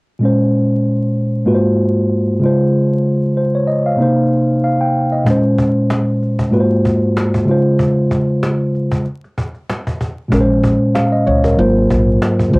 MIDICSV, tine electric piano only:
0, 0, Header, 1, 2, 480
1, 0, Start_track
1, 0, Key_signature, -5, "minor"
1, 0, Tempo, 631579
1, 162, Time_signature, 4, 2, 24, 8
1, 9571, End_track
2, 0, Start_track
2, 0, Title_t, "Tine electric piano"
2, 0, Program_c, 0, 4
2, 143, Note_on_c, 0, 46, 76
2, 158, Note_on_c, 0, 56, 69
2, 174, Note_on_c, 0, 61, 69
2, 189, Note_on_c, 0, 72, 77
2, 327, Control_c, 0, 64, 127
2, 1093, Note_off_c, 0, 46, 0
2, 1101, Note_off_c, 0, 56, 0
2, 1104, Note_on_c, 0, 44, 66
2, 1109, Note_off_c, 0, 61, 0
2, 1109, Note_on_c, 0, 56, 65
2, 1113, Note_on_c, 0, 58, 68
2, 1116, Note_off_c, 0, 72, 0
2, 1118, Note_on_c, 0, 65, 67
2, 1123, Note_on_c, 0, 66, 67
2, 1126, Note_on_c, 0, 71, 63
2, 1131, Control_c, 0, 64, 0
2, 1176, Note_on_c, 0, 72, 76
2, 1180, Note_off_c, 0, 71, 0
2, 1251, Control_c, 0, 64, 127
2, 1821, Note_on_c, 0, 49, 79
2, 1828, Note_off_c, 0, 56, 0
2, 1833, Note_off_c, 0, 44, 0
2, 1837, Note_off_c, 0, 58, 0
2, 1837, Note_on_c, 0, 56, 63
2, 1840, Note_off_c, 0, 65, 0
2, 1842, Note_off_c, 0, 66, 0
2, 1851, Control_c, 0, 64, 0
2, 1852, Note_on_c, 0, 65, 68
2, 1858, Note_off_c, 0, 72, 0
2, 1867, Note_on_c, 0, 72, 81
2, 1965, Control_c, 0, 64, 127
2, 2553, Note_off_c, 0, 72, 0
2, 2562, Note_on_c, 0, 72, 64
2, 2690, Note_off_c, 0, 72, 0
2, 2699, Note_on_c, 0, 73, 64
2, 2793, Note_on_c, 0, 75, 70
2, 2798, Note_off_c, 0, 73, 0
2, 2925, Note_off_c, 0, 75, 0
2, 2935, Note_on_c, 0, 77, 64
2, 3007, Note_off_c, 0, 49, 0
2, 3012, Note_on_c, 0, 48, 73
2, 3015, Note_off_c, 0, 56, 0
2, 3023, Note_off_c, 0, 65, 0
2, 3027, Note_on_c, 0, 58, 67
2, 3042, Note_on_c, 0, 63, 63
2, 3050, Control_c, 0, 64, 0
2, 3058, Note_on_c, 0, 72, 77
2, 3162, Control_c, 0, 64, 127
2, 3164, Note_off_c, 0, 77, 0
2, 3524, Note_on_c, 0, 77, 65
2, 3651, Note_off_c, 0, 77, 0
2, 3653, Note_on_c, 0, 79, 66
2, 3882, Note_off_c, 0, 79, 0
2, 3892, Note_on_c, 0, 75, 64
2, 3967, Note_off_c, 0, 48, 0
2, 3975, Note_off_c, 0, 58, 0
2, 3983, Note_off_c, 0, 63, 0
2, 3983, Note_on_c, 0, 46, 77
2, 3991, Note_off_c, 0, 72, 0
2, 3998, Note_on_c, 0, 56, 70
2, 4013, Control_c, 0, 64, 0
2, 4013, Note_on_c, 0, 61, 67
2, 4028, Note_on_c, 0, 72, 79
2, 4122, Note_off_c, 0, 75, 0
2, 4167, Control_c, 0, 64, 127
2, 4933, Note_off_c, 0, 46, 0
2, 4941, Note_off_c, 0, 56, 0
2, 4945, Note_on_c, 0, 44, 69
2, 4948, Note_off_c, 0, 61, 0
2, 4950, Note_on_c, 0, 56, 65
2, 4954, Note_on_c, 0, 58, 69
2, 4956, Note_off_c, 0, 72, 0
2, 4959, Note_on_c, 0, 65, 67
2, 4963, Note_on_c, 0, 66, 67
2, 4968, Note_on_c, 0, 71, 67
2, 4970, Control_c, 0, 64, 0
2, 5017, Note_on_c, 0, 72, 79
2, 5020, Note_off_c, 0, 71, 0
2, 5125, Control_c, 0, 64, 127
2, 5662, Note_on_c, 0, 49, 82
2, 5669, Note_off_c, 0, 56, 0
2, 5673, Note_off_c, 0, 44, 0
2, 5678, Note_off_c, 0, 58, 0
2, 5678, Note_on_c, 0, 56, 65
2, 5681, Note_off_c, 0, 65, 0
2, 5683, Note_off_c, 0, 66, 0
2, 5691, Control_c, 0, 64, 0
2, 5693, Note_on_c, 0, 65, 69
2, 5699, Note_off_c, 0, 72, 0
2, 5708, Note_on_c, 0, 72, 83
2, 5831, Control_c, 0, 64, 127
2, 5907, Note_off_c, 0, 49, 0
2, 5915, Note_off_c, 0, 56, 0
2, 5923, Note_off_c, 0, 65, 0
2, 5930, Note_off_c, 0, 72, 0
2, 6891, Control_c, 0, 64, 0
2, 7814, Note_on_c, 0, 46, 77
2, 7828, Note_on_c, 0, 56, 70
2, 7843, Note_on_c, 0, 61, 71
2, 7859, Note_on_c, 0, 70, 65
2, 7906, Note_off_c, 0, 70, 0
2, 7909, Note_on_c, 0, 72, 80
2, 7996, Control_c, 0, 64, 127
2, 8111, Note_off_c, 0, 72, 0
2, 8320, Note_on_c, 0, 77, 63
2, 8449, Note_off_c, 0, 77, 0
2, 8454, Note_on_c, 0, 75, 75
2, 8555, Note_off_c, 0, 75, 0
2, 8564, Note_on_c, 0, 73, 73
2, 8691, Note_off_c, 0, 73, 0
2, 8699, Note_on_c, 0, 70, 62
2, 8768, Note_off_c, 0, 46, 0
2, 8776, Note_off_c, 0, 56, 0
2, 8783, Note_off_c, 0, 61, 0
2, 8794, Note_on_c, 0, 44, 78
2, 8799, Note_on_c, 0, 54, 70
2, 8805, Note_on_c, 0, 58, 68
2, 8810, Control_c, 0, 64, 0
2, 8810, Note_on_c, 0, 65, 69
2, 8816, Note_on_c, 0, 72, 85
2, 8926, Note_off_c, 0, 70, 0
2, 8930, Control_c, 0, 64, 127
2, 9497, Note_on_c, 0, 49, 78
2, 9512, Note_on_c, 0, 56, 68
2, 9518, Note_off_c, 0, 44, 0
2, 9519, Note_off_c, 0, 65, 0
2, 9520, Note_off_c, 0, 54, 0
2, 9523, Note_off_c, 0, 58, 0
2, 9528, Note_on_c, 0, 65, 64
2, 9529, Note_off_c, 0, 72, 0
2, 9532, Control_c, 0, 64, 0
2, 9543, Note_on_c, 0, 72, 80
2, 9571, Note_off_c, 0, 49, 0
2, 9571, Note_off_c, 0, 56, 0
2, 9571, Note_off_c, 0, 65, 0
2, 9571, Note_off_c, 0, 72, 0
2, 9571, End_track
0, 0, End_of_file